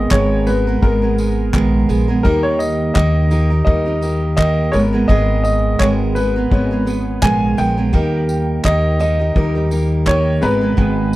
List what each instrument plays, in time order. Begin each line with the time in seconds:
Already playing: steel-string acoustic guitar G#2 D#3 G#3 B3 G#4 A#4, felt piano G#3 B3 A#4, upright piano D#5
0.11 upright bass G#1, steel-string acoustic guitar G#2 D#3 G#3 B3 G#4 A#4, upright piano C#5, kick, clap
0.47 steel-string acoustic guitar G#3 B3 G#4 A#4, upright piano B4, tambourine
0.67 steel-string acoustic guitar G#3 B3 G#4 A#4
0.81 upright bass G#1, felt piano G#3 B3 A#4, steel-string acoustic guitar G#3 B3 G#4 A#4, upright piano A#4, kick
1.02 steel-string acoustic guitar G#3 B3 G#4 A#4
1.18 steel-string acoustic guitar G#3 B3 G#4 A#4, tambourine
1.53 upright bass A#1, steel-string acoustic guitar G#2 D#3 G#3 B3 G#4 A#4, kick, clap
1.89 upright bass A#1, steel-string acoustic guitar G#3 B3 G#4 A#4, tambourine
2.08 steel-string acoustic guitar G#3 B3 G#4 A#4
2.23 upright bass D#2, steel-string acoustic guitar D#3 A#3 D#4 G4 A#4, felt piano G3 D#4 A#4, upright piano A#4, kick
2.43 upright piano C#5
2.59 upright piano D#5, tambourine
2.94 upright bass D#2, steel-string acoustic guitar D#3 A#3 D#4 G4 A#4, upright piano D#5, kick, clap
3.31 steel-string acoustic guitar A#3 D#4 G4 A#4, tambourine
3.50 steel-string acoustic guitar D#4 G4 A#4
3.65 upright bass D#2, felt piano G3 D#4 A#4, steel-string acoustic guitar A#3 D#4 G4 A#4, upright piano D#5, kick
3.86 steel-string acoustic guitar D#4 G4 A#4
4.02 steel-string acoustic guitar A#3 D#4 G4 A#4, tambourine
4.37 steel-string acoustic guitar D#3 A#3 D#4 G4 A#4, upright piano D#5, kick, clap
4.72 upright bass G#1, felt piano G#3 A#3 A#4, steel-string acoustic guitar G#3 B3 G#4 A#4, upright piano C#5, tambourine
4.79 felt piano B3
4.93 steel-string acoustic guitar G#3 B3 G#4 A#4
5.08 upright bass G#1, steel-string acoustic guitar G#2 D#3 G#3 B3 G#4 A#4, upright piano D#5, kick
5.44 upright piano D#5, tambourine
5.79 upright bass G#1, steel-string acoustic guitar G#2 D#3 G#3 B3 G#4 A#4, upright piano C#5, kick, clap
6.15 steel-string acoustic guitar G#3 B3 G#4 A#4, upright piano B4, tambourine
6.36 steel-string acoustic guitar G#3 B3 G#4 A#4
6.50 upright bass G#1, felt piano G#3 B3 C#5, steel-string acoustic guitar G#3 B3 G#4 A#4, kick
6.71 steel-string acoustic guitar G#3 B3 G#4 A#4
6.86 steel-string acoustic guitar G#3 B3 G#4, tambourine
7.22 upright bass A#1, steel-string acoustic guitar G#2 D#3 G#3 B3 G#4 A#4, upright piano G#5, kick, clap
7.57 upright bass A#1, steel-string acoustic guitar G#3 B3 G#4 A#4, upright piano G5, tambourine
7.77 steel-string acoustic guitar G#3 B3 G#4 A#4
7.93 upright bass D#2, steel-string acoustic guitar D#3 A#3 D#4 G4 A#4, felt piano G3 D#4 A#4, kick
8.29 tambourine
8.64 upright bass D#2, steel-string acoustic guitar D#3 A#3 D#4 G4 A#4, upright piano D#5, kick, clap
8.99 steel-string acoustic guitar A#3 D#4 G4 A#4, upright piano D#5, tambourine
9.19 steel-string acoustic guitar D#4 G4 A#4
9.35 upright bass D#2, felt piano G3 D#4 A#4, steel-string acoustic guitar A#3 D#4 G4 A#4, kick
9.55 steel-string acoustic guitar D#4 G4 A#4
9.71 steel-string acoustic guitar A#3 D#4 G4 A#4, tambourine
10.06 steel-string acoustic guitar D#3 A#3 D#4 G4 A#4, upright piano C#5, kick, clap
10.41 upright bass G#1, felt piano G#3 B3 A#5, steel-string acoustic guitar G#3 B3 G#4 A#4, upright piano B4, tambourine
10.61 steel-string acoustic guitar G#3 B3 G#4 A#4
10.77 upright bass G#1, steel-string acoustic guitar G#2 D#3 G#3 B3 G#4, kick